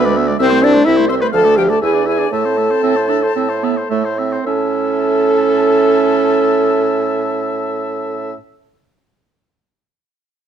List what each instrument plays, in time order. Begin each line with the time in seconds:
Already playing: bassoon D2, french horn B4, flute B5
0.05 clarinet G#3, oboe D5
0.17 clarinet B3, oboe E5
0.27 clarinet G#3, oboe D5
0.39 bassoon C2, clarinet C4, french horn C4, flute C5, oboe E5
0.51 clarinet A3, oboe C5
0.62 clarinet C4, french horn D4, flute D5, oboe E5
0.73 clarinet A3, oboe C5
0.84 bassoon C2, clarinet C4, french horn E4, oboe E5, flute E5
0.97 clarinet A3, oboe C5
1.09 clarinet C4, french horn C5, oboe E5, flute C6
1.21 clarinet A3, french horn B4, oboe C5, flute B5
1.32 bassoon D2, clarinet F3, french horn A4, oboe F5, flute A5
1.45 clarinet A3, oboe D5
1.56 clarinet F3, french horn G4, oboe F5, flute G5
1.69 clarinet A3, french horn A4, oboe D5, flute A5
1.82 bassoon E2, clarinet E4, french horn G#4, oboe E5, flute G#5
1.93 clarinet D4, oboe D5
2.06 clarinet E4, french horn G#4, oboe E5, flute G#5
2.18 clarinet D4, oboe D5
2.31 bassoon A2, clarinet A3, french horn A4, oboe E5, flute A5
2.45 clarinet C4, oboe C5
2.57 clarinet A3, oboe E5
2.70 clarinet C4, oboe C5
2.83 bassoon A2, clarinet C4, oboe E5
2.96 oboe C5
3.09 clarinet D4, oboe E5
3.23 oboe C5
3.36 bassoon A2, clarinet C4, oboe E5
3.49 oboe C5
3.63 clarinet B3, oboe E5
3.77 oboe C5
3.90 bassoon A2, clarinet A3, oboe E5
4.05 oboe C5
4.18 clarinet C4, oboe E5
4.32 oboe C5
4.45 bassoon A2, clarinet C#4, french horn A4, oboe E5, flute A5